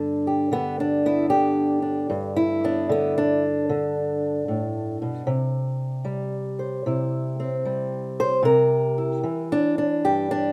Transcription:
steel-string acoustic guitar
Already playing: G2 D3 B3 D4
0.27 G4
0.52 D3 B3
0.80 D4
1.06 B3 E4
1.29 D3 G4
1.82 D4
2.10 G2
2.36 E4
2.64 B3 D4
2.89 D3 B3
3.18 D4
3.69 D3
4.48 A2
5.02 B2
5.27 C3
6.05 G3
6.59 C5
6.86 C3 E4
7.40 C4
7.65 G3
8.20 C5
8.43 C3 A#4
8.98 E4
9.23 E3
9.52 D4
9.78 D4
10.05 G2 G4
10.31 D4

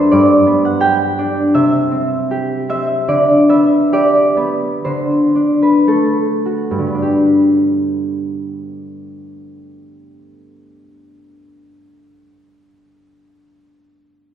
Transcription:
harp
Already playing: F#2 A3 D4 A4 C5
0.11 G2 D5
0.47 B3
0.65 F#5
0.80 G4 G5
1.18 D4
1.54 C3 E5
1.91 C4
2.31 G4
2.69 C4 E5
3.08 D3 D5
3.49 B3 E5
3.92 G4 D5
4.37 B3
4.85 D3 C5
5.35 D4
5.62 B4
5.87 A3 A4
6.45 F#4
6.71 G2
6.78 D3
6.87 B3
6.94 D4
7.02 G4

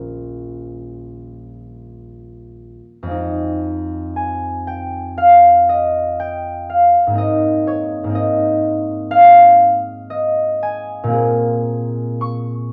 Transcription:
harp
Already playing: A#1 G3 C#4 F4 A#4 C#5 A#5
3.03 F2 G#3
3.08 C4 D#4
4.16 G#5
4.67 G5
5.18 F5
5.69 D#5
6.20 G5
6.70 F5
7.07 G#2 A#3
7.12 C4 D#4
7.18 D#5
7.67 C#5
8.04 G#2 A#3
8.09 C4 D#4
8.15 D#5
9.11 F5
10.10 D#5
10.63 G#5
11.04 A#2 A#3
11.09 C4 G#4
12.21 C#6

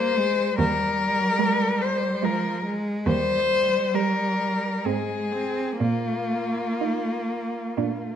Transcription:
cello
Already playing: G3 A#3 C5
0.18 G#3
0.58 D#2 G3 A#4
1.39 G#3
1.82 C5
2.23 F3 G#3 A#4
2.65 G#3
3.06 D#2 G3 C5
3.50 G3
3.94 G3 A#4
4.85 G#2 G#3 C4 G#4
5.32 C4
5.81 A#2 A#3 F4
6.81 D#4
7.78 A#2 D4

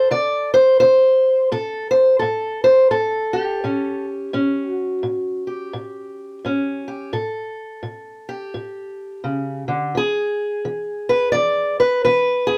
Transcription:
steel-string acoustic guitar
Already playing: A4 C5
0.11 D3 D5
0.54 C5
0.80 D3 C5
1.52 A2 A4
1.91 C5
2.19 A2 A4
2.64 C5
2.91 A2 A4
3.33 G4
3.64 A2 C#4
4.33 A2 C#4
4.67 F#4
5.03 A2
5.47 G4
5.73 A2
6.45 A2 C#4
6.88 G4
7.13 A2 A4
7.83 A2
8.29 G4
8.54 A2
9.24 C#3
9.68 D3
9.95 E3 G#4
10.65 E3
11.09 B4
11.32 E3 D5
11.80 B4
12.05 E3 B4
12.47 G#4

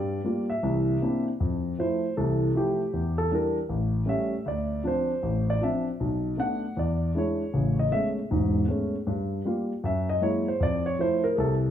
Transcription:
grand piano
Already playing: G2 G3 D5
0.24 G3 A#3 F4
0.50 E5
0.63 C2 E3
1.02 A#3 C4 D4 E4
1.40 F2
1.79 F3 A3 E4 C5
2.17 C2 E3 A4
2.55 F3 A3 E4 G4
2.93 E2
3.18 A4
3.31 E3 G3 D4 A#4
3.69 A1
4.06 G3 A3 C#4 E5
4.46 D2 D5
4.84 F3 C4 D4 C5
5.23 A1
5.50 D5
5.61 F3 C4 D4 E5
6.00 B1
6.37 A3 B3 D4 F#5
6.77 E2 D5
7.15 G#3 D4 E4 C#5
7.54 A1 C#3
7.79 D#5
7.91 G#3 A3 B3 C#4 E5
8.31 E1 G#2
8.68 G#3 A3 B3 C#4
9.07 G2
9.45 G3 A#3 F4
9.84 F#2 E5
10.09 D#5
10.21 F#3 G#3 A#3 E4 C#5
10.48 C5
10.60 F2 D5
10.86 C#5
10.99 F3 A3 E4 C5
11.24 A#4
11.35 C2 G#4
11.40 A4

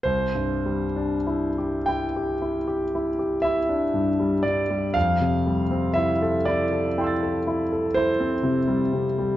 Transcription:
grand piano
0.03 C2 C5
0.35 G2
0.65 G3
0.96 D4
1.27 E4
1.58 G4
1.86 E4 G5
2.16 G4
2.42 E4
2.68 G4
2.95 E4
3.19 G4
3.42 E4 E5
3.69 D4
3.94 G2
4.20 G3
4.43 G2 D5
4.70 G3
4.94 F2 F5
5.20 C3
5.46 G3
5.71 C4
5.94 E4 E5
6.22 A4
6.45 E4 D5
6.71 A4
6.98 E4 G5 C6
7.04 E6 A6
7.22 A4
7.47 E4
7.72 A4
7.94 E4 C5
8.20 C4
8.43 C3
8.68 G3
8.93 C3
9.18 G3

